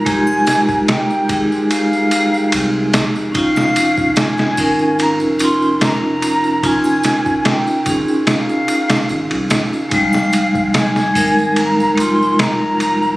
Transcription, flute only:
\new Staff \with { instrumentName = "Flute" } { \time 4/4 \key f \minor \tempo 4 = 73 aes''4 g''8 r8 f''4. r8 | f''4 aes''4 bes''8 c'''8 bes''4 | aes''4 g''8 r8 f''4. r8 | f''4 aes''4 bes''8 c'''8 bes''4 | }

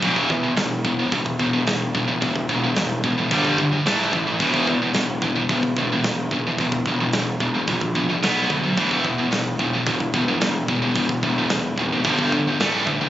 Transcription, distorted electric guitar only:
\new Staff \with { instrumentName = "Distorted electric guitar" } { \clef bass \time 4/4 \key e \minor \tempo 4 = 110 <e, b, e>8 <e, b,>16 <e, b,>16 <e, b,>8 <e, b,>16 <e, b,>16 <e, b,>8 <e, b,>16 <e, b,>16 <e, b,>8 <e, b,>16 <e, b,>16 | <e, b,>8 <e, b,>16 <e, b,>16 <e, b,>8 <e, b,>16 <e, b,>16 <g, d g>8 <g, d>16 <g, d>16 <a, e a>8 <a, e>16 <a, e>16 | <e, b, e>8 <e, b,>16 <e, b,>16 <e, b,>8 <e, b,>16 <e, b,>16 <e, b,>8 <e, b,>16 <e, b,>16 <e, b,>8 <e, b,>16 <e, b,>16 | <e, b,>8 <e, b,>16 <e, b,>16 <e, b,>8 <e, b,>16 <e, b,>16 <e, b,>8 <e, b,>16 <e, b,>16 <b, fis b>8 <b, fis>16 <b, fis>16 |
<e, b, e>8 <e, b,>16 <e, b,>16 <e, b,>8 <e, b,>16 <e, b,>16 <e, b,>8 <e, b,>16 <e, b,>16 <e, b,>8 <e, b,>16 <e, b,>16 | <e, b,>8 <e, b,>16 <e, b,>16 <e, b,>8 <e, b,>16 <e, b,>16 <g, d g>8 <g, d>16 <g, d>16 <a, e a>8 <a, e>16 <a, e>16 | }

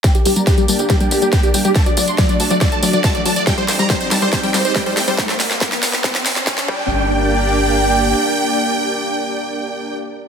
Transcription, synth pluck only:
\new Staff \with { instrumentName = "Synth pluck" } { \clef bass \time 4/4 \key g \minor \tempo 4 = 140 g16 r16 g16 g16 r16 g16 g16 r16 g16 g16 r16 g16 g16 r16 g16 g16 | r16 fis16 fis16 r16 fis16 fis16 r16 fis16 fis16 r16 fis16 fis16 r16 fis16 fis16 r16 | g16 g16 r16 g16 g16 r16 g16 g16 r16 g16 g16 r16 g16 g16 r16 g16 | r2. r8 g8~ |
g8 r2. r8 | r1 | }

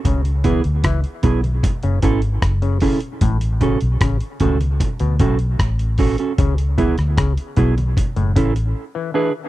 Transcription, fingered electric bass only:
\new Staff \with { instrumentName = "Fingered electric bass" } { \clef bass \time 4/4 \key fis \minor \tempo 4 = 76 cis,8. d,16 cis,16 r16 b,,8 r16 fis,,16 gis,,8 fis,,8 r8 | a,,8. b,,16 a,,16 r16 cis,8 r16 d,16 b,,8 a,,8. r16 | cis,8. d,16 cis,16 r16 b,,8 r16 fis,,16 a,,8 r4 | }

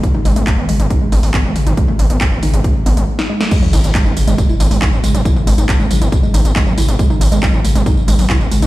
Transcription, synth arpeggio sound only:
\new Staff \with { instrumentName = "Synth arpeggio sound" } { \clef bass \time 4/4 \key gis \phrygian \tempo 4 = 138 r16 dis'16 gis16 a16 r16 b16 gis16 r16 dis'16 gis16 a16 r16 b16 gis16 r16 dis'16 | gis16 a16 r16 b16 gis16 r16 dis'16 gis16 a16 r16 b16 gis16 r16 dis'16 gis16 a16 | gis16 fis16 e'16 r16 gis16 dis'16 r16 gis16 fis16 e'16 r16 gis16 dis'16 r16 gis16 fis16 | e'16 r16 gis16 dis'16 r16 gis16 fis16 e'16 r16 gis16 dis'16 r16 gis16 fis16 e'16 r16 |
gis16 dis'16 r16 gis16 fis16 e'16 r16 gis16 dis'16 r16 gis16 fis16 e'16 r16 gis16 dis'16 | }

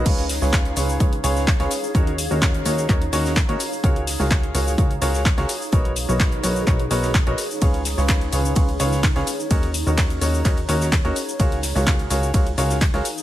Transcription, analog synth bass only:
\new Staff \with { instrumentName = "Analog synth bass" } { \clef bass \time 4/4 \key des \mixolydian \tempo 4 = 127 des,8. des,8. des,8 des,8 des,8. des,16 r8 | ees,8. ees,8. ees,8 ees,8 ees,8. ees,16 r8 | des,8. des,8. des,8 des,8 des,8. des,16 r8 | ces,8. ces,8. ces,8 ces,8 ces,8. ces,16 r8 |
des,8. des,8. des,8 des,8 des,8. des,16 r8 | ees,8. ees,8. ees,8 ees,8 ees,8. ees,16 r8 | des,8. des,8. des,8 des,8 des,8. des,16 r8 | }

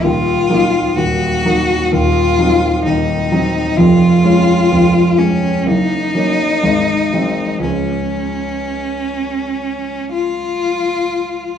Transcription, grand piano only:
\new Staff \with { instrumentName = "Grand piano" } { \clef bass \time 4/4 \key des \major \tempo 4 = 63 <ees,, ees,>8 <ges bes ees'>8 <ees,, ees,>8 <ges bes ees'>8 <ees,, ees,>8 <ges c' ees'>8 <ees,, ees,>8 <ges c' ees'>8 | <f,, f,>8 <aes des'>8 <f,, f,>8 <aes des'>8 <ges,, ges,>8 <ges bes des'>8 <aes,, aes,>8 <ges aes c'>8 | <des, f aes des'>1 | }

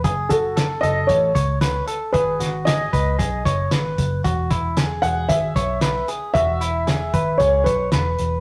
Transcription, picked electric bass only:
\new Staff \with { instrumentName = "Picked electric bass" } { \clef bass \time 4/4 \key e \major \tempo 4 = 114 fis,,4. fis,,8 a,,8 cis,4 r8 | gis,,8 gis,,4 cis,8 b,,8 fis,,8 gis,,8 fis,,8 | e,,4. e,,8 gis,,8 b,,4 r8 | e,,4. gis,,8 cis,8 b,,8 e,,8 e,,8 | }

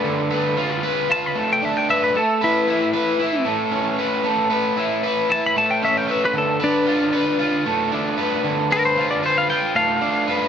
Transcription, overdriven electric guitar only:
\new Staff \with { instrumentName = "Overdriven electric guitar" } { \time 4/4 \key d \major \tempo 4 = 114 <d a d' f' b'>8 b'8 f'8 b'8 f'8 a8 d'8 b'8 | a8 b'8 e'8 b'8 e'8 a8 cis'8 b'8 | a8 b'8 e'8 b'8 e'8 a8 cis'8 b'8 | d8 b'8 f'8 b'8 f'8 a8 d'8 b'8 |
d8 b'8 f'8 b'8 f'8 a8 d'8 b'8 | }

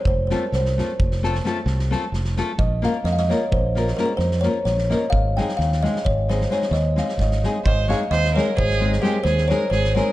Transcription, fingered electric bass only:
\new Staff \with { instrumentName = "Fingered electric bass" } { \clef bass \time 11/8 \key aes \major \tempo 4 = 130 f,,4 c,4 f,,4. c,4 f,,4 | bes,,4 f,4 bes,,4. f,4 bes,,4 | aes,,4 ees,4 aes,,4. ees,4 aes,,4 | aes,,4 ees,4 aes,,4. ees,4 aes,,4 | }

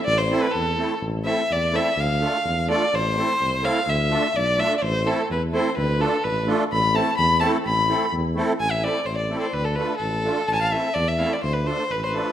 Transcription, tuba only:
\new Staff \with { instrumentName = "Tuba" } { \clef bass \time 2/4 \key a \minor \tempo 4 = 127 a,,4 e,4 | a,,4 e,4 | d,4 e,4 | a,,4 c,4 |
d,4 b,,4 | a,,4 e,4 | d,4 a,,4 | a,,4 e,4 |
a,,4 e,4 | a,,4 a,,4 | d,4 a,,4 | a,,4 e,4 |
d,4 a,,4 | }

